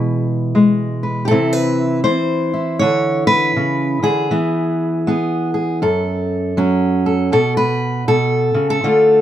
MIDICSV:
0, 0, Header, 1, 2, 480
1, 0, Start_track
1, 0, Tempo, 754717
1, 822, Time_signature, 4, 2, 24, 8
1, 5860, End_track
2, 0, Start_track
2, 0, Title_t, "Steel-string acoustic guitar"
2, 0, Program_c, 0, 25
2, 0, Note_on_c, 0, 47, 62
2, 0, Note_on_c, 0, 52, 75
2, 0, Note_on_c, 0, 56, 64
2, 0, Note_on_c, 0, 68, 86
2, 0, Note_on_c, 0, 71, 43
2, 159, Note_off_c, 0, 68, 0
2, 342, Note_off_c, 0, 56, 0
2, 349, Note_on_c, 0, 56, 62
2, 648, Note_off_c, 0, 71, 0
2, 655, Note_on_c, 0, 71, 41
2, 795, Note_on_c, 0, 67, 58
2, 804, Note_off_c, 0, 56, 0
2, 805, Note_off_c, 0, 47, 0
2, 807, Note_off_c, 0, 71, 0
2, 812, Note_on_c, 0, 69, 101
2, 820, Note_off_c, 0, 67, 0
2, 833, Note_off_c, 0, 52, 0
2, 833, Note_on_c, 0, 48, 69
2, 833, Note_on_c, 0, 52, 53
2, 838, Note_on_c, 0, 60, 49
2, 844, Note_on_c, 0, 64, 50
2, 971, Note_off_c, 0, 69, 0
2, 971, Note_on_c, 0, 71, 86
2, 1294, Note_off_c, 0, 71, 0
2, 1296, Note_on_c, 0, 72, 95
2, 1297, Note_off_c, 0, 52, 0
2, 1305, Note_on_c, 0, 52, 61
2, 1307, Note_off_c, 0, 48, 0
2, 1605, Note_off_c, 0, 64, 0
2, 1613, Note_on_c, 0, 64, 45
2, 1765, Note_off_c, 0, 64, 0
2, 1768, Note_off_c, 0, 60, 0
2, 1775, Note_off_c, 0, 72, 0
2, 1777, Note_on_c, 0, 73, 98
2, 1789, Note_on_c, 0, 50, 74
2, 2077, Note_off_c, 0, 73, 0
2, 2080, Note_on_c, 0, 71, 108
2, 2264, Note_off_c, 0, 50, 0
2, 2267, Note_on_c, 0, 49, 66
2, 2557, Note_off_c, 0, 49, 0
2, 2560, Note_on_c, 0, 50, 58
2, 2566, Note_on_c, 0, 68, 76
2, 2732, Note_off_c, 0, 52, 0
2, 2740, Note_off_c, 0, 50, 0
2, 2740, Note_off_c, 0, 71, 0
2, 2740, Note_on_c, 0, 52, 74
2, 2745, Note_on_c, 0, 59, 54
2, 3218, Note_off_c, 0, 59, 0
2, 3224, Note_off_c, 0, 68, 0
2, 3226, Note_on_c, 0, 59, 63
2, 3232, Note_on_c, 0, 68, 51
2, 3516, Note_off_c, 0, 68, 0
2, 3524, Note_on_c, 0, 68, 47
2, 3681, Note_off_c, 0, 68, 0
2, 3683, Note_off_c, 0, 59, 0
2, 3701, Note_off_c, 0, 52, 0
2, 3701, Note_on_c, 0, 42, 75
2, 3705, Note_on_c, 0, 69, 71
2, 4180, Note_on_c, 0, 54, 64
2, 4184, Note_on_c, 0, 61, 59
2, 4488, Note_off_c, 0, 69, 0
2, 4491, Note_on_c, 0, 69, 55
2, 4641, Note_off_c, 0, 54, 0
2, 4656, Note_on_c, 0, 47, 76
2, 4658, Note_off_c, 0, 69, 0
2, 4661, Note_on_c, 0, 69, 95
2, 4663, Note_off_c, 0, 42, 0
2, 4663, Note_off_c, 0, 61, 0
2, 4812, Note_off_c, 0, 69, 0
2, 4815, Note_on_c, 0, 71, 90
2, 5130, Note_off_c, 0, 47, 0
2, 5137, Note_off_c, 0, 71, 0
2, 5137, Note_on_c, 0, 47, 68
2, 5139, Note_on_c, 0, 69, 96
2, 5432, Note_off_c, 0, 47, 0
2, 5434, Note_on_c, 0, 49, 60
2, 5526, Note_off_c, 0, 69, 0
2, 5534, Note_on_c, 0, 69, 89
2, 5618, Note_off_c, 0, 49, 0
2, 5621, Note_on_c, 0, 50, 77
2, 5625, Note_on_c, 0, 57, 52
2, 5630, Note_on_c, 0, 65, 48
2, 5860, Note_off_c, 0, 50, 0
2, 5860, Note_off_c, 0, 57, 0
2, 5860, Note_off_c, 0, 65, 0
2, 5860, Note_off_c, 0, 69, 0
2, 5860, End_track
0, 0, End_of_file